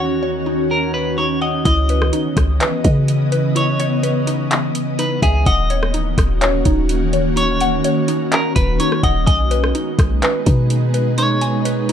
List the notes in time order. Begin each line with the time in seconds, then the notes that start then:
Already playing: D#2 D#3 C#4 D#4 F#4 C#5
0.00 F#5
0.23 C#5
0.46 D#4
0.71 A#4
0.94 B4
1.18 D#4 C#5
1.42 D#5 F#5
1.65 C#2 C#3 E3 B3 E4 D#5, kick, closed hi-hat
1.89 B4, closed hi-hat
2.02 cross-stick
2.13 D#4, closed hi-hat
2.37 C#2, kick, cross-stick, closed hi-hat
2.60 B4, clap, closed hi-hat
2.84 C#3 D#5, kick, closed hi-hat
3.08 closed hi-hat
3.32 B4, closed hi-hat
3.55 E4 C#5, closed hi-hat
3.80 C#5, closed hi-hat
4.03 B4, closed hi-hat
4.27 D#4, closed hi-hat
4.51 clap, closed hi-hat
4.75 closed hi-hat
4.99 D#4 B4, closed hi-hat
5.22 C#2 G#4 E5, kick, closed hi-hat
5.46 D#1 D#3 A#3 C#4 F#4 D#5 F#5, kick, closed hi-hat
5.70 C#5, closed hi-hat
5.83 cross-stick
5.94 D#4, closed hi-hat
6.18 D#1, kick, cross-stick, closed hi-hat
6.41 C#5, clap, closed hi-hat
6.65 D#1 D#4, kick, closed hi-hat
6.89 closed hi-hat
7.13 C#5, closed hi-hat
7.36 D#4 C#5, closed hi-hat
7.61 F#5, closed hi-hat
7.84 C#5, closed hi-hat
8.08 D#4, closed hi-hat
8.32 A#4, clap, closed hi-hat
8.56 D#1 B4, kick, closed hi-hat
8.80 D#4 C#5, closed hi-hat
8.92 cross-stick
9.03 D#1 D#5 F#5, kick, closed hi-hat
9.27 B1 G#3 B3 D#4 B4 D#5 G#5, kick, closed hi-hat
9.51 B4, closed hi-hat
9.64 cross-stick
9.75 D#4, closed hi-hat
9.99 B1, kick, cross-stick, closed hi-hat
10.22 B4, clap, closed hi-hat
10.46 B2 D#4, kick, closed hi-hat
10.70 closed hi-hat
10.94 B4, closed hi-hat
11.18 D#4 A#4 C#5, closed hi-hat
11.41 G#5, closed hi-hat
11.65 B4, closed hi-hat
11.89 D#4, closed hi-hat